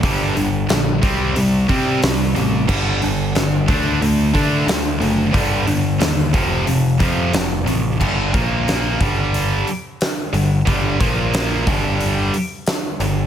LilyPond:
<<
  \new Staff \with { instrumentName = "Distorted electric guitar" } { \clef bass \time 4/4 \key g \minor \tempo 4 = 90 <g, d g>8 <g, d>8 <g, d>8 <c g c'>8 <c g>8 <c g c'>8 <c g>8 <c g>8 | <g, d g>8 <g, d>8 <g, d>8 <d a d'>8 <d a>8 <d a d'>8 <d a>8 <d a>8 | <g, d g>8 <g, d>8 <g, d>8 <f, c f>8 <f, c>8 <f, c f>8 <f, c>8 <f, c>8 | <g, d g>8 <bes, f bes>4 <g, d g>4 r4 <g, d>8 |
<g, d g>8 <bes, f bes>4 <g, d g>4 r4 <g, d>8 | }
  \new Staff \with { instrumentName = "Picked electric bass" } { \clef bass \time 4/4 \key g \minor g,,8 g,,8 bes,,8 c,8 c,8 c8 c,8 a,,8 | g,,8 g,,8 g,,8 d,8 d,8 d8 d,8 fis,,8 | g,,8 g,,8 ees,8 f,,8 f,,8 f,8 f,,8 a,,8 | g,,8 bes,,4 g,,4 r4 g,,8 |
g,,8 bes,,4 g,,4 r4 g,,8 | }
  \new DrumStaff \with { instrumentName = "Drums" } \drummode { \time 4/4 <hho bd>8 hho8 <hho sn>8 <hho bd>8 hho8 <hho bd>8 <hho sn>8 hho8 | <cymc bd>8 hho8 <hho sn>8 <hho bd>8 hho8 <hho bd>8 <hho sn>8 hho8 | <hho bd>8 hho8 <hho sn>8 <hho bd>8 hho8 <hho bd>8 <hho sn>8 hho8 | <cymc bd>8 <hho bd>8 <hho sn>8 <hho bd>8 hho8 hho8 <hho sn>8 hho8 |
<hho bd>8 <hho bd>8 <hho sn>8 <hho bd>8 hho8 hho8 <hho sn>8 hho8 | }
>>